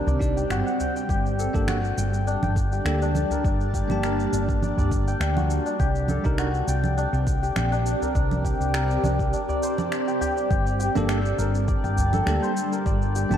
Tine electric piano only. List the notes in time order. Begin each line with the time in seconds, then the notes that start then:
Already playing: D#3 D4 G4 A#4
0.20 D4 D#4 G4 D5
1.53 A#3 D4 G4 A4
2.85 A#3 D4 G4 A4
3.88 A#3 D4 G4 A5
6.24 D4 D#4 G4 A#4
10.95 A#3 D4 G4 A4
12.26 A#3 D4 G4 A4
13.29 G3 A#3 D4
13.34 A5